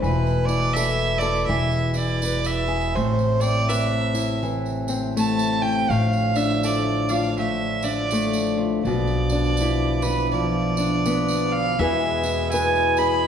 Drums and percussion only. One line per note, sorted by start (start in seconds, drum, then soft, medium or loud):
0.04 tambourine soft
0.26 tambourine soft
0.49 tambourine medium
0.62 tambourine soft
0.76 tambourine medium
0.99 tambourine soft
1.21 tambourine medium
1.36 tambourine soft
1.50 tambourine soft
1.71 tambourine soft
1.94 tambourine medium
2.08 tambourine soft
2.22 tambourine medium
2.44 tambourine medium
2.67 tambourine soft
2.81 tambourine soft
2.96 tambourine soft
3.19 tambourine soft
3.41 tambourine medium
3.70 tambourine loud
4.15 tambourine medium
4.28 tambourine soft
4.43 tambourine soft
4.66 tambourine soft
4.88 tambourine medium
5.17 tambourine loud
5.39 tambourine medium
5.90 tambourine soft
6.13 tambourine soft
6.36 tambourine medium
6.50 tambourine soft
6.63 tambourine loud
7.09 tambourine medium
7.24 tambourine soft
7.38 tambourine soft
7.82 tambourine medium
8.11 tambourine medium
8.33 tambourine medium
8.85 tambourine soft
9.07 tambourine soft
9.30 tambourine medium
9.44 tambourine soft
9.57 tambourine medium
10.02 tambourine medium
10.17 tambourine soft
10.31 tambourine soft
10.77 tambourine medium
11.06 tambourine medium
11.28 tambourine medium
11.79 tambourine soft
12.23 tambourine medium
12.37 tambourine soft
12.51 tambourine loud
12.75 tambourine soft
12.97 tambourine medium
13.12 tambourine soft